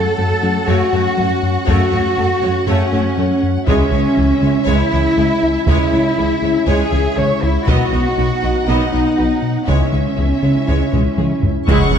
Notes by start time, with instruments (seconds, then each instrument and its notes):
Already playing: ambient pad A3 C#4 F#4 C#5, cello section A4, french horn section A4, violin section F#5
0.17 double bass section F#2, analog synth bass F#2, viola section A3, synth arpeggio sound A3, violin section A4
0.42 double bass section F#2, analog synth bass F#3, viola section A3, synth arpeggio sound C#4, violin section C#5
0.67 analog synth bass F#2, double bass section F#2, trombone section C#3 A3, synth arpeggio sound F#3, viola section A3, french horn section F#4, cello section F#4, violin section C#5
0.92 double bass section F#2, analog synth bass F#2, viola section A3, synth arpeggio sound A3, violin section C#5
1.17 double bass section F#2, analog synth bass F#3, viola section A3, synth arpeggio sound C#4, violin section A4
1.43 analog synth bass F#2
1.67 double bass section F#2, analog synth bass F#2, trombone section C#3 A3, synth arpeggio sound F#3, viola section A3, cello section F#4, french horn section F#4, violin section C#5, taiko
1.92 double bass section F#2, analog synth bass F#3, viola section A3, synth arpeggio sound C#4, violin section C#5
2.17 double bass section F#2, analog synth bass F#2, viola section A3, synth arpeggio sound A3, violin section A4
2.42 double bass section F#2, analog synth bass F#3, viola section A3, synth arpeggio sound C#4, violin section C#5
2.67 double bass section F#2, analog synth bass F#2, trombone section C#3 A3, synth arpeggio sound F#3, viola section A3, french horn section C#4, cello section C#4, violin section C#5
2.92 double bass section F#2, analog synth bass F#2, synth arpeggio sound A3, viola section A3, violin section C#5
3.17 double bass section F#2, analog synth bass F#3, viola section A3, synth arpeggio sound C#4, violin section A4
3.43 analog synth bass F#2
3.67 double bass section C#2, analog synth bass C#2, synth arpeggio sound C#3, trombone section E3 G#3, ambient pad G#3 C#4 E4 C#5, viola section G#3, french horn section C#4, cello section C#4, violin section C#5 E5, taiko
3.92 double bass section C#2, analog synth bass C#3, synth arpeggio sound G#3, viola section G#3, violin section C#5
4.17 double bass section C#2, analog synth bass C#2, synth arpeggio sound E3, viola section G#3, violin section G#4
4.42 double bass section C#2, analog synth bass C#3, synth arpeggio sound G#3, viola section G#3, violin section C#5
4.67 double bass section C#2, analog synth bass C#2, synth arpeggio sound C#3, trombone section E3 G#3, viola section G#3, cello section E4, french horn section E4, violin section C#5
4.92 double bass section C#2, analog synth bass C#2, synth arpeggio sound E3, viola section G#3, violin section C#5
5.17 double bass section C#2, analog synth bass C#3, synth arpeggio sound G#3, viola section G#3, violin section G#4
5.43 analog synth bass C#2
5.67 double bass section C#2, analog synth bass C#2, synth arpeggio sound C#3, trombone section E3 G#3, viola section G#3, cello section E4, french horn section E4, violin section C#5, taiko
5.92 double bass section C#2, analog synth bass C#3, synth arpeggio sound G#3, viola section G#3, violin section C#5
6.17 double bass section C#2, analog synth bass C#2, synth arpeggio sound E3, viola section G#3, violin section G#4
6.42 double bass section C#2, analog synth bass C#3, synth arpeggio sound G#3, viola section G#3, violin section C#5
6.67 double bass section C#2, analog synth bass C#2, synth arpeggio sound C#3, trombone section E3 G#3, viola section G#3, french horn section G#4, cello section G#4, violin section C#5
6.92 double bass section C#2, analog synth bass C#2, synth arpeggio sound E3, viola section G#3, violin section C#5
7.17 double bass section C#2, analog synth bass C#3, synth arpeggio sound G#3, viola section G#3, violin section G#4, cello section C#5, french horn section C#5
7.42 analog synth bass C#2, cello section E4, french horn section E4
7.67 double bass section B1, analog synth bass B2, trombone section D#3 F#3, ambient pad F#3 B3 D#4 D#5, synth arpeggio sound B3, viola section B3, french horn section F#4, cello section F#4, violin section D#5 F#5, taiko
7.92 double bass section B1, analog synth bass B3, viola section B3, synth arpeggio sound F#4, violin section D#5
8.17 double bass section B1, analog synth bass B2, viola section B3, synth arpeggio sound D#4, violin section B4
8.42 double bass section B1, analog synth bass B3, viola section B3, synth arpeggio sound F#4, violin section D#5
8.67 double bass section B1, analog synth bass B2, trombone section D#3 F#3, synth arpeggio sound B3, viola section B3, french horn section D#4, cello section D#4, violin section D#5
8.93 double bass section B1, analog synth bass B2, viola section B3, synth arpeggio sound D#4, violin section D#5
9.17 double bass section B1, viola section B3, analog synth bass B3, synth arpeggio sound F#4, violin section B4
9.42 analog synth bass B2
9.67 double bass section C#2, analog synth bass C#2, synth arpeggio sound C#3, trombone section E3 G#3, viola section G#3, ambient pad G#3 C#4 E4 C#5, french horn section C#4, cello section C#4, violin section C#5 E5, taiko
9.92 double bass section C#2, analog synth bass C#3, viola section G#3, synth arpeggio sound G#3, violin section C#5
10.17 double bass section C#2, analog synth bass C#2, synth arpeggio sound E3, viola section G#3, violin section G#4
10.43 double bass section C#2, analog synth bass C#3, synth arpeggio sound G#3, viola section G#3, violin section C#5
10.67 double bass section C#2, analog synth bass C#2, synth arpeggio sound C#3, trombone section E3 G#3, viola section G#3, violin section C#5
10.92 double bass section C#2, analog synth bass C#2, synth arpeggio sound E3, viola section G#3, violin section C#5, taiko low-mid
11.18 double bass section C#2, analog synth bass C#3, synth arpeggio sound G#3, viola section G#3, violin section G#4, taiko mid
11.43 analog synth bass C#2, taiko low
11.68 double bass section C#2, analog synth bass C#2, cello section C#3, synth arpeggio sound C#3, trombone section E3 G#3, viola section G#3 E4, ambient pad G#3 C#4 E4 C#5, french horn section C#4, violin section F#5 C#6, taiko, impact
11.93 double bass section C#2, cello section C#3, analog synth bass C#3, viola section E3 C#4, synth arpeggio sound G#3